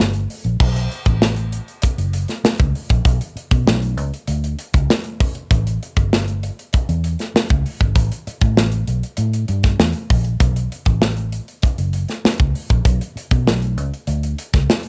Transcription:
0.00 G1, snare
0.14 closed hi-hat
0.30 open hi-hat
0.44 A#1, closed hi-hat
0.60 B1, kick, crash
0.76 closed hi-hat
0.92 closed hi-hat
1.05 A1, kick, closed hi-hat
1.22 snare
1.36 closed hi-hat
1.52 closed hi-hat
1.68 closed hi-hat
1.82 muted fingered electric bass stroke, kick, closed hi-hat
1.98 F#1, closed hi-hat
2.13 closed hi-hat
2.28 snare, closed hi-hat
2.44 muted fingered electric bass stroke, snare
2.58 C#2, kick, closed hi-hat
2.75 open hi-hat
2.90 A#1, kick, closed hi-hat
3.05 B1, kick, closed hi-hat
3.21 closed hi-hat
3.36 muted fingered electric bass stroke, closed hi-hat
3.51 B2, kick, closed hi-hat
3.66 B1, snare
3.82 closed hi-hat
3.97 C#2, closed hi-hat
4.14 closed hi-hat
4.27 D2, closed hi-hat
4.44 closed hi-hat
4.59 closed hi-hat
4.74 C#2, kick, closed hi-hat
4.90 snare
5.04 closed hi-hat
5.20 kick, open hi-hat
5.35 closed hi-hat
5.51 A1, kick, closed hi-hat
5.67 closed hi-hat
5.83 closed hi-hat
5.96 G1, kick, closed hi-hat
6.13 snare
6.28 closed hi-hat
6.43 closed hi-hat
6.59 closed hi-hat
6.73 muted fingered electric bass stroke, kick, closed hi-hat
6.89 E2, closed hi-hat
7.04 closed hi-hat
7.19 snare, closed hi-hat
7.34 muted fingered electric bass stroke, snare
7.49 C#2, kick, closed hi-hat
7.66 open hi-hat
7.80 G#1, kick, closed hi-hat
7.95 A1, kick, closed hi-hat
8.12 closed hi-hat
8.27 muted fingered electric bass stroke, closed hi-hat
8.41 A2, kick, closed hi-hat
8.57 A1, snare
8.72 closed hi-hat
8.88 B1, closed hi-hat
9.03 closed hi-hat
9.17 A2, closed hi-hat
9.33 closed hi-hat
9.48 G2, closed hi-hat
9.63 kick, snare, closed hi-hat
9.79 E2, snare
9.93 closed hi-hat
10.10 A#1, kick, open hi-hat
10.24 closed hi-hat
10.40 B1, kick, closed hi-hat
10.56 closed hi-hat
10.72 closed hi-hat
10.85 A1, kick, closed hi-hat
11.02 snare
11.17 closed hi-hat
11.32 closed hi-hat
11.48 closed hi-hat
11.62 muted fingered electric bass stroke, kick, closed hi-hat
11.78 F#1, closed hi-hat
11.93 closed hi-hat
12.08 snare, closed hi-hat
12.25 muted fingered electric bass stroke, snare
12.38 C#2, kick, closed hi-hat
12.55 open hi-hat
12.70 A#1, kick, closed hi-hat
12.85 B1, kick, closed hi-hat
13.01 closed hi-hat
13.16 muted fingered electric bass stroke, closed hi-hat
13.31 B2, kick, closed hi-hat
13.47 B1, snare
13.62 closed hi-hat
13.77 C#2, closed hi-hat
13.94 closed hi-hat
14.07 D2, closed hi-hat
14.23 closed hi-hat
14.38 closed hi-hat
14.53 C#2, kick, snare, closed hi-hat
14.70 snare
14.83 closed hi-hat

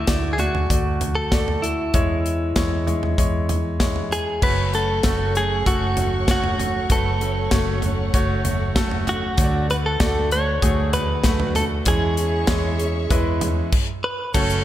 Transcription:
Already playing: D3 A3 E4 F#4 D5
0.07 D2 A3 F#4 D5, kick, snare, closed hi-hat
0.33 G#4
0.38 A3 F#4 D5, closed hi-hat, floor tom
0.55 floor tom
0.70 D2 A3 F#4 D5, kick, closed hi-hat
1.01 closed hi-hat, floor tom
1.15 A4
1.32 A3 F#4 D5, kick, snare, closed hi-hat
1.48 floor tom
1.62 E4, closed hi-hat
1.94 E2 E3 G#3 E4 C#5, kick, closed hi-hat
2.26 closed hi-hat
2.56 E2 G#3 E4 C#5, kick, snare, closed hi-hat
2.87 G#3 E4 C#5, closed hi-hat, floor tom
3.03 floor tom
3.18 E2 G#3 E4 C#5, kick, closed hi-hat
3.49 closed hi-hat, floor tom
3.79 G#3 E4 C#5, kick, snare, closed hi-hat
3.96 floor tom
4.12 G#4, closed hi-hat
4.42 F#1 F#2 C#3 F#3 A3 C#4 F#4 B4 C#5 F#5 C#6, kick, crash
4.73 F#3 A3 C#4 F#4 A4, closed hi-hat
5.03 F#1 F#2 C#3 F#3 A3 C#4 F#4 A4, kick, snare, closed hi-hat
5.35 F#3 A3 C#4 F#4 G#4, closed hi-hat
5.66 F#1 F#3 A3 C#4 F#4 A4, kick, closed hi-hat
5.97 F#3 A3 C#4 F#4, closed hi-hat, floor tom
6.27 F#2 C#3 F#3 A3 C#4 F#4 C#5, kick, snare, closed hi-hat
6.44 floor tom
6.59 F#3 A3 C#4 F#4, closed hi-hat, floor tom
6.89 F#1 F#2 C#3 F#3 A3 C#4 F#4 A4 B4, kick, closed hi-hat
7.20 F#3 A3 C#4 F#4, closed hi-hat
7.51 F#1 F#2 C#3 F#3 A3 C#4 F#4 C#5, kick, snare, closed hi-hat
7.82 F#3 A3 C#4 F#4, closed hi-hat, floor tom
8.13 F#1 F#3 A3 C#4 F#4 C#5, kick, closed hi-hat
8.45 F#3 A3 C#4 F#4, closed hi-hat, floor tom
8.76 F#2 C#3 F#3 A3 C#4 F#4 A4, kick, snare, closed hi-hat
8.91 floor tom
9.07 F#3 A3 C#4 F#4, closed hi-hat, floor tom
9.38 D2 D3 F#3 A3 D4 F#4 C#5, kick, closed hi-hat
9.44 D5
9.69 A3 D4 F#4 B4, closed hi-hat
9.86 A4
10.00 D2 D3 F#3 A3 D4 F#4 D5, kick, snare, closed hi-hat
10.31 A3 D4 F#4 C#5, closed hi-hat
10.62 D2 F#3 A3 D4 F#4 G#4, kick, closed hi-hat
10.93 A3 D4 F#4 B4, closed hi-hat, floor tom
11.24 D3 F#3 A3 D4 F#4 B4, kick, snare, closed hi-hat
11.40 floor tom
11.55 A3 D4 F#4 A4, closed hi-hat, floor tom
11.85 E2 E3 G#3 C#4 E4 G#4 C#5 E5 C#6, kick, closed hi-hat
12.17 C#4 E4 G#4, closed hi-hat
12.47 E2 E3 G#3 C#4 E4 G#4 C#5, kick, snare, closed hi-hat
12.79 C#4 E4 G#4, closed hi-hat
13.10 E2 E3 G#3 C#4 E4 G#4 B4, kick, closed hi-hat
13.41 C#4 E4 G#4, closed hi-hat, floor tom
13.72 kick, crash
14.04 B4
14.34 F#1 F#2 C#3 F#3 A3 C#4 F#4 A4 C#5 F#5 C#6, kick, crash, shaker
14.50 shaker

